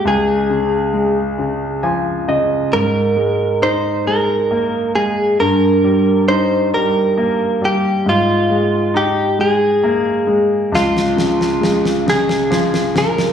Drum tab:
SD |------------|------------|------------|------------|

SD |oooooooooooo|